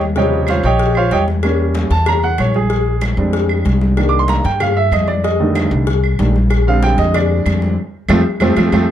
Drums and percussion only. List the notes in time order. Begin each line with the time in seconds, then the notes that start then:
0.01 high conga
0.16 cowbell, high conga
0.34 high conga
0.47 cowbell, high conga, claves
0.64 high conga
0.79 cowbell, high conga
0.95 high conga, claves
1.11 cowbell, high conga
1.28 high conga
1.43 cowbell, high conga, claves
1.60 high conga
1.75 cowbell, high conga
1.91 cowbell, high conga
2.06 cowbell, high conga, low conga, claves
2.23 high conga, low conga
2.38 cowbell, high conga, claves
2.54 high conga
2.70 cowbell
2.86 high conga
3.01 cowbell, high conga, claves
3.18 high conga
3.33 cowbell
3.49 high conga, claves
3.66 cowbell, high conga
3.81 high conga
3.97 cowbell, claves
4.13 high conga
4.28 cowbell, high conga
4.45 cowbell, high conga
4.60 cowbell, high conga, low conga, claves
4.76 high conga
4.92 cowbell, high conga, claves
5.07 high conga
5.24 cowbell, high conga
5.40 high conga
5.55 cowbell, high conga, claves
5.71 high conga
5.87 cowbell
6.04 high conga, claves
6.19 cowbell, high conga
6.36 high conga
6.50 cowbell, high conga, claves
6.67 high conga
6.83 cowbell, high conga
6.98 cowbell, high conga
7.14 cowbell, high conga, low conga, claves
7.31 high conga
7.46 cowbell, high conga, claves
7.62 high conga
8.09 cowbell, high conga, claves
8.40 cowbell, high conga, claves
8.56 cowbell, high conga, claves
8.72 cowbell, high conga, claves